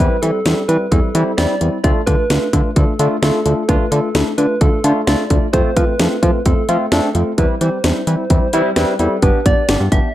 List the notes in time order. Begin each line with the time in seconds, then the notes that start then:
0.00 G3 C4 E4 B4, kick, closed hi-hat
0.22 E3 G3 C4 E4 A4, closed hi-hat
0.46 E2 G3 C4 E4, snare, closed hi-hat
0.68 E3 G3 C4 E4 B4, closed hi-hat
0.91 E2 G3 C4 E4 A4, kick, closed hi-hat
1.15 E3 G3 C4 E4, closed hi-hat
1.37 E2 G3 C4 E4 D5, snare, closed hi-hat
1.61 E2 G3 C4 E4, closed hi-hat
1.84 D2 A3 D4 F4 D5, kick, closed hi-hat
2.06 D3 A3 D4 F4 B4, kick, closed hi-hat
2.30 D2 A3 D4 F4, snare, closed hi-hat
2.53 D3 A3 D4 F4, kick, closed hi-hat
2.76 D2 A3 D4 F4 A4, kick, closed hi-hat
2.99 D3 A3 D4 F4, closed hi-hat
3.22 D2 A3 D4 F4 A4, snare, closed hi-hat
3.46 D2 A3 D4 F4, closed hi-hat
3.69 D2 A3 D4 F4 B4, kick, closed hi-hat
3.91 D3 A3 D4 F4 A4, closed hi-hat
4.15 D2 A3 D4 E4, snare, closed hi-hat
4.38 D3 A3 D4 F4 B4, closed hi-hat
4.61 D2 A3 D4 F4 A4, kick, closed hi-hat
4.84 D3 A3 D4 F4, closed hi-hat
5.07 D2 A3 D4 F4 D5, snare, closed hi-hat
5.30 D2 A3 D4 F4, kick, closed hi-hat
5.53 F2 A3 C4 F4 C5, kick, closed hi-hat
5.76 F3 A3 C4 F4 B4, kick, closed hi-hat
5.99 F2 A3 C4 F4, snare, closed hi-hat
6.22 F3 A3 C4 F4, kick, closed hi-hat
6.46 F2 A3 C4 F4 A4, kick, closed hi-hat
6.69 F3 A3 C4 F4, closed hi-hat
6.92 F2 A3 C4 D4 A4, snare, closed hi-hat
7.15 F2 A3 C4 F4, closed hi-hat
7.38 E2 G3 C4 E4 B4, kick, closed hi-hat
7.61 E3 G3 C4 G4 C5, closed hi-hat
7.84 E2 G3 C4 E4, snare, closed hi-hat
8.07 E3 G3 C4 E4, closed hi-hat
8.30 E2 G3 C4 E4, kick, closed hi-hat
8.53 E3 G3 C4 E4, closed hi-hat
8.76 E2 G3 C4 E4 B4, snare, closed hi-hat
8.99 E2 G3 C4 E4 A4, closed hi-hat
9.22 G1 B3 D4 G4 B4, kick, closed hi-hat
9.46 G1 B3 D4 G4 D5, kick, closed hi-hat
9.69 G1 B3 D4 G4, snare, closed hi-hat
9.80 G2
9.92 G1 B3 D4 G4 E5, kick, closed hi-hat